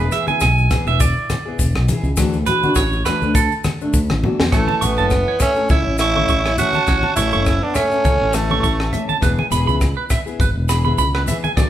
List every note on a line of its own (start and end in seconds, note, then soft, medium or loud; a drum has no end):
0.00 0.12 B4 medium
0.10 0.27 E3 medium
0.10 0.28 B3 medium
0.10 0.27 E4 medium
0.10 0.26 G#4 medium
0.10 0.28 E5 loud
0.10 closed hi-hat medium
0.10 maracas medium
0.27 0.45 B3 soft
0.27 0.45 E4 soft
0.27 0.44 G#4 medium
0.27 0.41 G#5 medium
0.27 high conga medium
0.27 maracas soft
0.40 0.67 B1 medium
0.40 0.84 G#5 medium
0.40 kick medium
0.40 cross-stick medium
0.40 maracas medium
0.58 maracas soft
0.70 0.87 E3 medium
0.70 0.88 B3 medium
0.70 0.86 E4 medium
0.70 0.86 G#4 medium
0.70 kick medium
0.70 cross-stick medium
0.70 closed hi-hat medium
0.70 low conga medium
0.70 maracas medium
0.87 1.12 E1 medium
0.87 1.05 B3 soft
0.87 1.04 E4 medium
0.87 1.04 G#4 soft
0.87 1.00 E5 medium
0.87 maracas soft
1.00 1.85 D5 medium
1.00 kick loud
1.00 maracas medium
1.30 cross-stick medium
1.30 closed hi-hat medium
1.30 high conga medium
1.30 low conga medium
1.30 maracas medium
1.46 1.63 B3 soft
1.46 1.63 E4 soft
1.46 1.62 G#4 medium
1.59 1.73 E1 medium
1.59 kick medium
1.59 maracas medium
1.75 1.87 B1 medium
1.75 cross-stick medium
1.88 2.07 E3 medium
1.88 2.08 E4 medium
1.88 2.09 G#4 medium
1.88 closed hi-hat medium
1.88 high conga medium
1.88 low conga medium
1.88 maracas medium
2.03 2.15 C#2 medium
2.03 maracas soft
2.17 2.43 D2 loud
2.17 2.36 E3 medium
2.17 2.36 A3 medium
2.17 2.37 D4 medium
2.17 2.37 F#4 medium
2.17 kick medium
2.17 cross-stick medium
2.17 maracas loud
2.33 maracas soft
2.46 2.63 E3 medium
2.46 2.64 A3 medium
2.46 2.64 D4 medium
2.46 2.62 F#4 medium
2.46 2.75 B4 loud
2.46 closed hi-hat medium
2.46 low conga medium
2.46 maracas medium
2.63 2.81 A3 soft
2.63 2.81 D4 medium
2.63 2.80 F#4 medium
2.63 high conga medium
2.63 maracas soft
2.75 3.02 A1 medium
2.75 3.05 C#5 loud
2.75 kick medium
2.75 cross-stick medium
2.75 maracas medium
2.93 maracas soft
3.05 3.22 E3 medium
3.05 3.22 A3 medium
3.05 3.21 D4 medium
3.05 3.20 F#4 medium
3.05 3.34 B4 medium
3.05 cross-stick medium
3.05 closed hi-hat soft
3.05 low conga medium
3.05 maracas medium
3.21 3.48 D2 medium
3.21 3.39 A3 soft
3.21 3.39 D4 medium
3.21 muted steel-string acoustic guitar stroke medium
3.21 maracas soft
3.35 3.53 A4 loud
3.35 kick loud
3.35 maracas medium
3.52 maracas soft
3.64 cross-stick medium
3.64 closed hi-hat soft
3.64 high conga medium
3.64 low conga medium
3.64 maracas medium
3.81 3.98 A3 medium
3.81 3.98 D4 medium
3.81 maracas soft
3.94 4.08 D2 medium
3.94 kick medium
3.94 maracas medium
4.10 4.22 A1 medium
4.10 cross-stick medium
4.10 high conga medium
4.10 maracas soft
4.23 4.42 E3 medium
4.23 4.42 A3 medium
4.23 4.43 D4 medium
4.23 4.43 F#4 medium
4.23 high tom medium
4.23 high conga medium
4.23 low conga medium
4.40 4.52 E2 medium
4.40 snare medium
4.52 4.67 A1 medium
4.52 4.71 E3 medium
4.52 4.83 E3 medium
4.52 4.71 A3 medium
4.52 4.85 A3 medium
4.52 4.72 C#4 medium
4.52 4.72 A4 medium
4.52 4.61 C#5 medium
4.52 kick medium
4.52 cross-stick medium
4.52 maracas medium
4.68 4.75 A5 medium
4.68 high conga medium
4.81 4.97 A1 medium
4.81 4.98 E3 medium
4.81 5.40 E3 medium
4.81 4.98 A3 medium
4.81 5.41 B3 medium
4.81 4.97 C#4 medium
4.81 4.96 A4 medium
4.81 4.90 C#6 medium
4.81 closed hi-hat medium
4.81 low conga medium
4.81 maracas medium
4.97 5.24 F#1 medium
4.97 5.15 A3 soft
4.97 5.15 C#4 soft
4.97 5.14 A4 soft
4.97 5.05 A5 medium
4.97 maracas soft
5.10 kick medium
5.10 cross-stick medium
5.10 maracas medium
5.28 5.35 C#5 medium
5.40 5.68 A3 medium
5.40 5.69 C#4 medium
5.40 5.50 E5 medium
5.40 kick medium
5.40 cross-stick medium
5.40 closed hi-hat soft
5.40 low conga medium
5.40 maracas medium
5.56 5.74 A3 soft
5.56 5.74 C#4 soft
5.56 5.73 A4 medium
5.56 maracas soft
5.69 5.84 C#2 medium
5.69 5.98 C#4 medium
5.69 5.98 E4 medium
5.69 5.79 C#5 medium
5.69 kick medium
5.69 high conga medium
5.69 maracas medium
5.87 6.24 A1 medium
5.98 6.15 E3 medium
5.98 6.16 A3 soft
5.98 6.55 C#4 medium
5.98 6.15 C#4 medium
5.98 6.54 E4 loud
5.98 6.13 A4 medium
5.98 6.10 C#6 medium
5.98 cross-stick medium
5.98 closed hi-hat soft
5.98 maracas loud
6.15 6.33 A3 soft
6.15 6.33 C#4 soft
6.15 6.32 A4 medium
6.15 6.24 C#6 medium
6.15 high conga medium
6.28 6.55 A1 medium
6.28 6.38 C#6 medium
6.28 kick medium
6.28 maracas medium
6.45 6.53 C#5 medium
6.45 cross-stick medium
6.57 6.77 E3 medium
6.57 6.77 A3 medium
6.57 7.13 C#4 medium
6.57 6.78 C#4 medium
6.57 7.13 F#4 loud
6.57 6.78 A4 medium
6.57 6.67 E5 medium
6.57 closed hi-hat soft
6.57 high conga medium
6.57 low conga medium
6.57 maracas medium
6.73 6.82 A5 medium
6.73 high conga medium
6.73 maracas soft
6.87 7.02 A1 loud
6.87 6.97 C#5 medium
6.87 kick medium
6.87 cross-stick medium
6.87 maracas medium
7.03 7.11 A5 medium
7.03 high conga medium
7.16 7.31 A1 medium
7.16 7.33 E3 medium
7.16 7.33 A3 medium
7.16 7.64 C#4 medium
7.16 7.33 C#4 medium
7.16 7.65 E4 loud
7.16 7.31 A4 medium
7.16 7.26 C#6 medium
7.16 closed hi-hat soft
7.16 low conga medium
7.16 maracas medium
7.32 7.60 F#1 medium
7.32 7.51 A3 soft
7.32 7.50 C#4 soft
7.32 7.49 A4 medium
7.32 7.40 C#6 medium
7.32 maracas soft
7.46 kick medium
7.46 cross-stick medium
7.46 maracas medium
7.63 7.78 B3 medium
7.63 7.77 D4 medium
7.75 8.37 A3 medium
7.75 8.36 C#4 loud
7.75 7.85 E5 medium
7.75 cross-stick medium
7.75 closed hi-hat soft
7.75 low conga medium
7.75 maracas medium
7.90 8.09 A3 soft
7.90 8.09 C#4 soft
7.90 8.08 A4 medium
7.90 maracas soft
8.05 8.19 C#2 medium
8.05 8.14 C#5 medium
8.05 kick medium
8.05 high conga medium
8.05 maracas medium
8.22 8.59 A1 medium
8.33 8.50 E3 soft
8.33 8.94 E3 medium
8.33 8.50 A3 medium
8.33 8.94 A3 medium
8.33 8.48 A4 medium
8.33 muted clean electric guitar stroke medium
8.33 muted steel-string acoustic guitar stroke medium
8.33 cross-stick medium
8.33 closed hi-hat soft
8.33 maracas medium
8.49 8.68 A3 soft
8.49 8.67 C#4 soft
8.49 8.66 A4 medium
8.49 8.58 C#6 medium
8.49 high conga medium
8.63 8.90 A1 medium
8.63 8.72 C#6 medium
8.63 kick medium
8.63 maracas medium
8.80 cross-stick medium
8.92 9.12 E3 medium
8.92 9.12 A3 medium
8.92 9.13 C#4 medium
8.92 9.13 A4 medium
8.92 9.02 E5 medium
8.92 closed hi-hat soft
8.92 high conga medium
8.92 low conga medium
9.09 9.16 A5 medium
9.09 high conga medium
9.09 maracas soft
9.21 9.36 E1 medium
9.21 9.41 E3 medium
9.21 9.41 B3 medium
9.21 9.41 E4 medium
9.21 9.41 G#4 medium
9.21 9.32 B4 medium
9.21 kick medium
9.21 cross-stick medium
9.21 maracas medium
9.39 9.46 G#5 medium
9.39 high conga medium
9.49 9.66 E1 medium
9.49 9.67 E3 medium
9.49 9.67 B3 medium
9.49 9.66 E4 medium
9.49 9.65 G#4 medium
9.49 9.61 B5 medium
9.49 closed hi-hat soft
9.49 low conga medium
9.49 maracas medium
9.66 9.94 C#2 medium
9.66 9.85 B3 soft
9.66 9.84 E4 soft
9.66 9.84 G#4 medium
9.66 9.75 B5 medium
9.66 maracas soft
9.81 kick medium
9.81 cross-stick medium
9.81 maracas medium
9.97 10.04 B4 medium
10.10 10.20 E5 medium
10.10 kick medium
10.10 cross-stick medium
10.10 closed hi-hat soft
10.10 low conga medium
10.10 maracas medium
10.26 10.44 B3 medium
10.26 10.43 E4 soft
10.26 10.43 G#4 medium
10.26 maracas soft
10.40 10.54 G#1 medium
10.40 10.49 B4 medium
10.40 kick medium
10.40 high conga medium
10.40 maracas medium
10.56 10.93 E1 medium
10.68 10.85 E3 medium
10.68 10.85 B3 medium
10.68 10.84 E4 medium
10.68 10.83 G#4 medium
10.68 10.78 B5 medium
10.68 cross-stick medium
10.68 closed hi-hat soft
10.68 maracas medium
10.84 11.03 B3 soft
10.84 11.02 E4 medium
10.84 11.02 G#4 medium
10.84 10.92 B5 medium
10.84 high conga medium
10.98 11.25 C#2 medium
10.98 11.07 B5 medium
10.98 kick medium
10.98 maracas medium
11.15 11.22 B4 medium
11.15 cross-stick medium
11.26 11.46 E3 medium
11.26 11.47 B3 medium
11.26 11.47 E4 medium
11.26 11.47 G#4 medium
11.26 11.37 E5 medium
11.26 closed hi-hat soft
11.26 high conga medium
11.26 low conga medium
11.26 maracas medium
11.44 11.51 G#5 medium
11.44 high conga medium
11.44 maracas soft
11.56 11.70 D2 medium
11.56 11.70 E3 medium
11.56 11.70 A3 medium
11.56 11.70 E4 medium
11.56 11.70 F#4 medium
11.56 11.66 D5 medium
11.56 kick medium
11.56 cross-stick medium
11.56 low conga medium
11.56 maracas medium